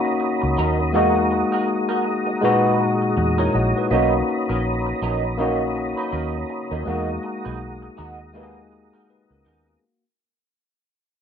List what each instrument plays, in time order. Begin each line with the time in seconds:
Already playing: tine electric piano A#3 C#4 D#4 F#4, tonewheel organ C#5 A#5 B5 D#6
0.05 muted clean electric guitar stroke
0.20 muted clean electric guitar stroke
0.42 fingered electric bass C#2, muted clean electric guitar stroke
0.57 fingered electric bass D#2, clean electric guitar F#3 C#4 D#4 A#4
0.79 muted clean electric guitar stroke
0.93 fingered electric bass E2, tine electric piano G#3 A#3 D#4 F#4, clean electric guitar G#3 D#4 F#4 A#4, tonewheel organ G#4
0.97 tonewheel organ F#5 A#5
1.31 muted clean electric guitar stroke
1.52 clean electric guitar G#3 D#4 F#4 A#4
1.68 muted clean electric guitar stroke
1.89 clean electric guitar G#3 D#4 F#4 A#4
2.05 muted clean electric guitar stroke
2.27 muted clean electric guitar stroke
2.41 tine electric piano A#2 G#3 D#4 F#4, clean electric guitar G#3 D#4 F#4 B4
2.80 muted clean electric guitar stroke
3.01 muted clean electric guitar stroke
3.17 fingered electric bass E2, muted clean electric guitar stroke
3.38 clean electric guitar G#3 D#4 F#4 A#4, tine electric piano E4 C#5
3.54 fingered electric bass A#1, tine electric piano F#4 D#5, muted clean electric guitar stroke
3.76 tine electric piano D#4 B4, muted clean electric guitar stroke
3.90 fingered electric bass B1, clean electric guitar F#3 C#4 D#4 A#4, tine electric piano A#3 C#4 D#4 F#4, tonewheel organ C#5 A#5 B5 D#6
4.28 muted clean electric guitar stroke
4.49 fingered electric bass A#1, clean electric guitar F#3 C#4 D#4 A#4
4.86 muted clean electric guitar stroke
5.02 fingered electric bass A#1, clean electric guitar F#3 C#4 D#4 A#4
5.23 muted clean electric guitar stroke
5.38 clean electric guitar F#3 C#4 D#4 A#4, tine electric piano A#3 C#4 D#4 F#4
5.76 muted clean electric guitar stroke
5.97 clean electric guitar F#3 C#4 D#4 B4
6.12 fingered electric bass D#2, clean electric guitar F#3 C#4 D#4 A#4
6.49 muted clean electric guitar stroke
6.71 fingered electric bass D#2, clean electric guitar F#3 C#4 D#4 A#4
6.85 fingered electric bass E2, tine electric piano G#3 A#3 D#4, clean electric guitar G#3 D#4 F#4 A#4, tonewheel organ G#4 F#5 A#5
6.90 tine electric piano F#4
7.23 muted clean electric guitar stroke
7.45 fingered electric bass B1, clean electric guitar G#3 D#4 F#4 B4
7.82 muted clean electric guitar stroke
7.97 fingered electric bass D#2, clean electric guitar G#3 D#4 F#4 A#4
8.20 muted clean electric guitar stroke
8.33 tine electric piano G#3 A#3 D#4 G4, clean electric guitar G#3 D#4 F#4 B4
8.43 tine electric piano G#4
8.72 muted clean electric guitar stroke
8.93 clean electric guitar G#3 D#4 F#4 A#4
9.09 tine electric piano D#4 B4, muted clean electric guitar stroke
9.30 fingered electric bass C#2, tine electric piano C#4 A#4, muted clean electric guitar stroke
9.45 fingered electric bass D#2, clean electric guitar G#3 D#4 F#4 A#4, tine electric piano B3 G#4
9.67 tine electric piano A#3 F#4, muted clean electric guitar stroke